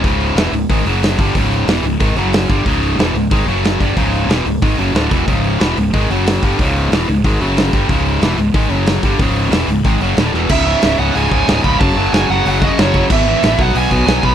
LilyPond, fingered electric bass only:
\new Staff \with { instrumentName = "Fingered electric bass" } { \clef bass \time 4/4 \key cis \minor \tempo 4 = 184 cis,,4 e,,8 cis,,8 gis,,8 fis,,4 g,,8 | cis,,4 e,,8 cis,,8 gis,,8 fis,,4 g,,8 | cis,,4 e,,8 cis,,8 gis,,8 fis,,4 g,,8 | cis,,4 e,,8 cis,,8 gis,,8 fis,,8 d,,8 e,,8 |
cis,,4 e,,8 cis,,8 gis,,8 fis,,4 g,,8 | cis,,4 e,,8 cis,,8 gis,,8 fis,,4 g,,8 | cis,,4 e,,8 cis,,8 gis,,8 fis,,4 g,,8 | cis,,4 e,,8 cis,,8 gis,,8 fis,,8 d,,8 e,,8 |
cis,,4 cis,,8 cis,,8 cis,,8 cis,,8 cis,,8 cis,,8 | fis,,8 fis,,8 fis,,8 fis,,8 fis,,4 fis,,4 | gis,,4 a,,8 b,,8 b,,8 b,,8 b,,8 b,,8 | }